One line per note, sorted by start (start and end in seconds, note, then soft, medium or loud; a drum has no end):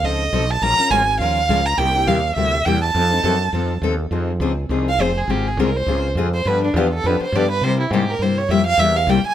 0.03 0.31 C#2 medium
0.03 0.23 F3 medium
0.03 0.23 C4 medium
0.03 0.23 D#4 medium
0.03 0.23 A4 medium
0.03 0.52 D#5 medium
0.33 0.61 B1 medium
0.33 0.43 F3 medium
0.33 0.43 C4 medium
0.33 0.44 D#4 medium
0.33 0.44 A4 medium
0.51 0.64 A5 loud
0.62 0.77 A#1 medium
0.62 0.78 F3 medium
0.62 0.78 G#3 medium
0.62 0.79 C#4 medium
0.62 0.79 F4 medium
0.62 0.77 A#4 medium
0.62 0.93 A#5 loud
0.79 0.90 C#4 soft
0.79 0.90 F4 medium
0.79 0.90 A#4 medium
0.90 1.19 G#1 medium
0.90 1.01 F3 medium
0.90 1.02 G#3 medium
0.90 1.02 C#4 medium
0.90 1.02 F4 loud
0.90 1.02 A#4 loud
0.90 1.20 G#5 loud
1.19 1.48 D#2 medium
1.19 1.39 F3 medium
1.19 1.39 G#3 medium
1.19 1.40 C#4 medium
1.19 1.40 F4 medium
1.19 1.40 A#4 medium
1.19 1.67 F5 loud
1.49 1.77 C#2 medium
1.49 1.60 F3 medium
1.49 1.60 G#3 medium
1.49 1.60 C#4 medium
1.49 1.60 F4 medium
1.49 1.60 A#4 medium
1.66 1.79 A#5 medium
1.78 2.06 C2 medium
1.78 1.95 C3 medium
1.78 1.95 G3 medium
1.78 1.95 A#3 medium
1.78 1.95 E4 medium
1.78 1.94 G4 medium
1.78 2.09 G5 loud
1.95 2.07 A#3 soft
1.95 2.07 E4 medium
1.95 2.07 G4 medium
2.07 2.36 D#2 medium
2.07 2.18 C3 medium
2.07 2.18 G3 medium
2.07 2.18 A#3 medium
2.07 2.18 E4 loud
2.07 2.18 G4 loud
2.07 2.35 F5 medium
2.36 2.65 D2 medium
2.36 2.56 C3 medium
2.36 2.56 G3 medium
2.36 2.56 A#3 medium
2.36 2.56 E4 medium
2.36 2.56 G4 medium
2.36 2.67 E5 medium
2.65 2.94 E2 medium
2.65 2.76 C3 medium
2.65 2.77 G3 medium
2.65 2.77 A#3 medium
2.65 2.77 E4 loud
2.65 2.77 G4 medium
2.65 2.81 G5 medium
2.82 3.78 A5 loud
2.95 3.23 F2 medium
2.95 3.11 F3 medium
2.95 3.11 C4 medium
2.95 3.11 D#4 medium
2.95 3.10 A4 medium
3.12 3.23 C4 soft
3.12 3.23 D#4 soft
3.12 3.24 A4 medium
3.24 3.52 F#2 medium
3.24 3.35 F3 medium
3.24 3.35 C4 medium
3.24 3.35 D#4 medium
3.24 3.35 A4 loud
3.53 3.81 F2 medium
3.53 3.72 F3 medium
3.53 3.73 C4 medium
3.53 3.73 D#4 medium
3.53 3.73 A4 medium
3.82 4.10 D#2 medium
3.82 3.93 F3 medium
3.82 3.93 C4 medium
3.82 3.94 D#4 medium
3.82 3.94 A4 medium
4.11 4.39 F2 medium
4.11 4.31 F3 medium
4.11 4.31 C4 medium
4.11 4.31 D#4 medium
4.11 4.31 G#4 medium
4.40 4.69 C#2 medium
4.40 4.52 F3 medium
4.40 4.52 C4 medium
4.40 4.52 D#4 medium
4.40 4.52 G#4 medium
4.69 4.98 C2 medium
4.69 4.89 F3 medium
4.69 4.89 C4 medium
4.69 4.89 D#4 medium
4.69 4.90 G#4 medium
4.89 5.03 F5 medium
4.98 5.27 F1 medium
4.98 5.10 F3 medium
4.98 5.10 C4 medium
4.98 5.10 D#4 medium
4.98 5.10 G#4 medium
4.98 5.19 C5 medium
5.18 5.32 G#4 medium
5.27 5.56 G#1 medium
5.27 5.48 C#3 medium
5.27 5.48 G#3 medium
5.27 5.48 C4 medium
5.27 5.48 F4 medium
5.27 5.49 G4 medium
5.27 5.48 G#4 medium
5.47 5.61 G#4 medium
5.57 5.86 C2 medium
5.57 5.69 C#3 medium
5.57 5.69 G#3 medium
5.57 5.69 C4 medium
5.57 5.69 F4 medium
5.57 5.69 G#4 medium
5.57 5.78 A#4 medium
5.76 6.05 C5 medium
5.86 6.15 C#2 medium
5.86 6.07 C#3 medium
5.86 6.07 G#3 medium
5.86 6.07 C4 medium
5.86 6.07 F4 medium
5.86 6.07 G#4 medium
6.15 6.44 F2 medium
6.15 6.27 C#3 medium
6.15 6.28 G#3 medium
6.15 6.27 C4 medium
6.15 6.28 F4 medium
6.15 6.28 G#4 loud
6.34 6.48 C5 medium
6.45 6.73 G2 medium
6.45 6.65 D3 medium
6.45 6.65 F3 medium
6.45 6.65 B3 medium
6.45 6.65 D4 medium
6.45 6.65 G4 medium
6.45 6.63 B4 medium
6.64 6.78 D4 medium
6.74 7.03 E2 loud
6.74 6.86 D3 medium
6.74 6.86 F3 medium
6.74 6.86 B3 medium
6.74 6.86 D4 loud
6.74 6.92 F4 medium
6.74 6.86 G4 loud
6.94 7.08 A4 medium
7.04 7.19 F2 medium
7.04 7.23 D3 medium
7.04 7.24 F3 medium
7.04 7.23 B3 medium
7.04 7.24 D4 medium
7.04 7.24 G4 medium
7.04 7.22 B4 medium
7.20 7.37 C5 medium
7.20 muted fretless electric bass stroke soft
7.32 7.61 G2 medium
7.32 7.44 D3 medium
7.32 7.45 F3 medium
7.32 7.45 B3 medium
7.32 7.45 D4 medium
7.32 7.45 G4 loud
7.32 7.50 D5 medium
7.51 7.65 B4 medium
7.61 7.90 C3 medium
7.61 7.82 C3 medium
7.61 7.82 G3 medium
7.61 7.82 A#3 medium
7.61 7.82 E4 medium
7.61 7.82 G4 medium
7.61 7.80 C5 loud
7.80 7.93 E4 medium
7.91 8.18 G#2 medium
7.91 8.03 C3 medium
7.91 8.03 G3 medium
7.91 8.02 A#3 medium
7.91 8.03 E4 medium
7.91 8.11 G4 medium
7.91 8.03 G4 loud
8.10 8.24 A#4 medium
8.19 8.48 G2 medium
8.19 8.40 C3 medium
8.19 8.40 G3 medium
8.19 8.40 A#3 medium
8.19 8.40 E4 medium
8.19 8.39 C5 medium
8.23 8.41 G4 medium
8.38 8.52 C#5 medium
8.49 8.77 F2 medium
8.49 8.61 C3 medium
8.49 8.61 G3 medium
8.49 8.61 A#3 medium
8.49 8.61 E4 medium
8.49 8.61 G4 medium
8.49 8.66 E5 medium
8.66 8.81 F5 loud
8.78 9.06 E2 medium
8.78 8.98 C3 medium
8.78 8.98 G3 medium
8.78 8.98 A#3 medium
8.78 8.98 E4 medium
8.78 8.98 G4 medium
8.78 8.98 E5 medium
8.96 9.11 F5 medium
9.07 9.23 C2 medium
9.07 9.19 C3 medium
9.07 9.19 G3 loud
9.07 9.19 A#3 medium
9.07 9.19 E4 medium
9.07 9.19 G4 loud
9.07 9.25 G5 medium
9.27 9.34 G#5 loud